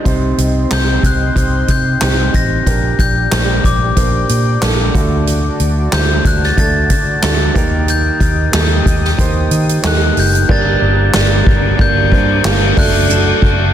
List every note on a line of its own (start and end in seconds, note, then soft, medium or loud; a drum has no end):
0.04 0.32 C2 medium
0.04 0.99 C3 medium
0.04 0.53 C4 medium
0.04 0.53 D#4 medium
0.04 0.53 G4 medium
0.04 4.91 G4 medium
0.04 2.64 C5 medium
0.04 0.54 C5 medium
0.04 2.64 D#5 medium
0.04 2.63 C6 medium
0.04 kick medium
0.04 closed hi-hat medium
0.38 0.65 C2 medium
0.38 closed hi-hat medium
0.69 0.98 C2 medium
0.69 1.18 C4 medium
0.69 1.18 D#4 soft
0.69 1.19 G4 medium
0.69 1.19 C5 medium
0.69 1.05 G6 medium
0.69 snare loud
0.69 clap medium
0.69 closed hi-hat medium
1.03 1.30 C2 medium
1.03 1.72 F#6 medium
1.03 kick medium
1.03 closed hi-hat medium
1.34 1.63 C2 medium
1.34 1.83 C4 medium
1.34 1.84 D#4 medium
1.34 1.84 G4 medium
1.34 1.84 C5 medium
1.34 kick medium
1.34 closed hi-hat medium
1.68 1.95 C3 medium
1.68 2.37 G6 medium
1.68 kick medium
1.68 closed hi-hat medium
2.00 2.28 C2 medium
2.00 2.49 C4 medium
2.00 2.49 D#4 medium
2.00 2.49 G4 medium
2.00 2.50 C5 medium
2.00 snare loud
2.00 clap medium
2.00 closed hi-hat medium
2.34 2.61 A1 medium
2.34 2.96 A#6 medium
2.34 kick medium
2.34 closed hi-hat medium
2.65 2.93 A#1 medium
2.65 3.60 A#2 medium
2.65 3.14 A#3 medium
2.65 3.15 D4 medium
2.65 3.15 G4 medium
2.65 3.15 A#4 medium
2.65 7.51 D5 medium
2.65 4.92 G5 medium
2.65 7.51 D6 medium
2.65 kick medium
2.65 closed hi-hat medium
2.99 3.26 A#1 medium
2.99 3.61 G6 medium
2.99 kick medium
2.99 closed hi-hat medium
3.31 3.59 A#1 medium
3.31 3.79 A#3 medium
3.31 3.80 D4 soft
3.31 3.80 G4 medium
3.31 3.80 C5 medium
3.31 snare loud
3.31 clap medium
3.31 closed hi-hat medium
3.64 3.91 A#1 medium
3.64 4.91 D6 medium
3.64 kick medium
3.64 closed hi-hat medium
3.96 4.24 A#1 medium
3.96 4.45 A#3 medium
3.96 4.45 D4 medium
3.96 4.45 G4 medium
3.96 4.45 C5 medium
3.96 kick medium
3.96 closed hi-hat medium
4.29 4.56 A#2 medium
4.29 closed hi-hat medium
4.61 4.89 A#1 medium
4.61 4.94 A#3 medium
4.61 4.93 D4 medium
4.61 4.95 G4 medium
4.61 4.94 A4 medium
4.61 snare loud
4.61 clap medium
4.61 closed hi-hat medium
4.94 5.48 D2 medium
4.94 5.89 D3 medium
4.94 5.74 A3 medium
4.94 5.74 D4 medium
4.94 7.53 F#4 medium
4.94 5.75 F#4 medium
4.94 5.75 A4 medium
4.94 7.53 A5 medium
4.94 kick loud
4.94 closed hi-hat medium
5.27 closed hi-hat medium
5.60 5.87 D2 loud
5.60 closed hi-hat medium
5.91 6.19 D2 medium
5.91 6.40 A3 medium
5.91 6.40 D4 medium
5.91 6.40 F#4 medium
5.91 6.41 C5 medium
5.91 6.27 G6 medium
5.91 snare loud
5.91 clap medium
5.91 closed hi-hat medium
6.25 6.52 D2 medium
6.25 6.45 F#6 medium
6.25 kick medium
6.25 closed hi-hat medium
6.43 6.58 A6 medium
6.43 snare soft
6.57 6.92 D2 medium
6.57 7.05 A3 medium
6.57 7.06 D4 medium
6.57 7.06 F#4 medium
6.57 7.06 A4 medium
6.57 7.93 A6 loud
6.57 kick medium
6.57 closed hi-hat medium
6.90 7.17 D3 medium
6.90 kick medium
6.90 closed hi-hat medium
7.21 7.50 D2 medium
7.21 7.55 A3 medium
7.21 7.55 D4 medium
7.21 7.55 F#4 medium
7.21 7.56 A4 medium
7.21 snare loud
7.21 clap medium
7.21 closed hi-hat loud
7.54 8.09 D#2 medium
7.54 8.49 D#3 medium
7.54 8.35 A#3 medium
7.54 8.35 D#4 medium
7.54 10.46 G4 medium
7.54 8.35 G4 medium
7.54 8.36 A#4 loud
7.54 10.46 D#5 medium
7.54 10.46 G5 medium
7.54 10.46 D#6 medium
7.54 kick loud
7.54 closed hi-hat medium
7.88 9.81 G6 medium
7.88 closed hi-hat medium
8.20 8.47 D#2 medium
8.20 kick medium
8.20 closed hi-hat medium
8.52 8.80 D#2 medium
8.52 9.01 A#3 medium
8.52 9.01 D#4 medium
8.52 9.01 G4 medium
8.52 9.02 A4 medium
8.52 snare loud
8.52 clap medium
8.52 closed hi-hat medium
8.86 9.13 D#2 medium
8.86 kick medium
8.86 closed hi-hat medium
9.04 snare soft
9.18 9.45 D#2 loud
9.18 9.66 A#3 medium
9.18 9.67 D#4 medium
9.18 9.67 G4 medium
9.18 9.67 C5 medium
9.18 kick medium
9.18 closed hi-hat medium
9.51 9.78 D#3 medium
9.51 closed hi-hat medium
9.69 closed hi-hat medium
9.82 10.11 D#2 medium
9.82 10.31 A#3 medium
9.82 10.32 D#4 medium
9.82 10.32 G4 medium
9.82 10.32 A4 medium
9.82 snare loud
9.82 clap medium
9.82 closed hi-hat loud
9.87 10.16 F#6 medium
10.17 10.43 F#1 medium
10.17 10.52 G6 medium
10.17 open hi-hat medium
10.35 closed hi-hat soft
10.48 10.76 G1 medium
10.48 10.82 G2 medium
10.48 11.43 G2 medium
10.48 10.82 D3 medium
10.48 10.82 G3 medium
10.48 10.97 A#3 medium
10.48 10.82 A#3 medium
10.48 10.97 D4 medium
10.48 10.81 D4 medium
10.48 12.75 G4 medium
10.48 10.97 G4 medium
10.48 10.98 A#4 medium
10.48 10.80 A#4 medium
10.48 12.75 D5 medium
10.48 10.98 D5 loud
10.48 12.75 A#5 medium
10.48 13.73 D6 medium
10.48 11.85 A6 medium
10.48 kick loud
10.48 crash loud
10.81 11.08 G1 loud
10.81 11.12 G3 medium
10.81 11.13 A#3 medium
10.81 11.14 D4 medium
10.81 11.14 A#4 medium
10.81 ride medium
11.13 11.41 G1 loud
11.13 11.47 G3 medium
11.13 11.62 A#3 medium
11.13 11.47 A#3 medium
11.13 11.62 D4 medium
11.13 11.46 D4 medium
11.13 11.62 G4 medium
11.13 11.63 A#4 medium
11.13 11.45 A#4 medium
11.13 11.63 D5 medium
11.13 snare loud
11.13 clap medium
11.13 ride medium
11.46 11.73 G1 medium
11.46 11.78 G3 soft
11.46 11.78 A#3 medium
11.46 11.79 D4 medium
11.46 11.79 A#4 medium
11.46 kick loud
11.46 ride medium
11.78 12.13 G1 loud
11.78 12.12 G2 medium
11.78 12.12 D3 medium
11.78 12.12 G3 medium
11.78 12.03 A#3 medium
11.78 12.12 A#3 medium
11.78 12.04 D4 medium
11.78 12.11 D4 medium
11.78 12.04 G4 medium
11.78 12.04 A#4 medium
11.78 12.10 A#4 medium
11.78 12.04 D5 medium
11.78 12.81 G6 loud
11.78 kick loud
11.78 ride medium
12.11 12.39 G2 loud
12.11 12.43 G3 medium
12.11 12.36 A#3 medium
12.11 12.44 A#3 medium
12.11 12.36 D4 medium
12.11 12.44 D4 medium
12.11 12.37 G4 medium
12.11 12.45 A#4 medium
12.11 12.37 A#4 medium
12.11 12.37 C5 medium
12.11 kick medium
12.11 ride medium
12.44 12.71 G1 medium
12.44 12.77 G3 medium
12.44 12.77 A#3 medium
12.44 12.75 D4 medium
12.44 12.77 D4 medium
12.44 12.77 G4 medium
12.44 12.77 A#4 medium
12.44 12.76 A#4 medium
12.44 12.78 F5 medium
12.44 snare loud
12.44 clap loud
12.44 ride medium
12.76 13.31 F#1 medium
12.76 13.57 A3 medium
12.76 13.57 D4 medium
12.76 13.09 D4 soft
12.76 13.57 F#4 medium
12.76 13.09 F#4 soft
12.76 13.10 A4 medium
12.76 13.73 A4 medium
12.76 13.57 A4 medium
12.76 13.73 D5 medium
12.76 13.57 D5 medium
12.76 13.73 F#5 medium
12.76 13.72 F#6 medium
12.76 kick loud
12.76 open hi-hat medium
12.76 ride medium
13.09 13.42 F#3 medium
13.09 13.43 D4 medium
13.09 13.41 F#4 medium
13.09 13.40 A4 medium
13.09 hi-hat pedal medium
13.09 ride medium
13.41 13.69 F#1 loud
13.41 13.73 D4 medium
13.41 13.73 F#4 medium
13.41 13.73 A4 medium
13.41 kick medium
13.41 ride medium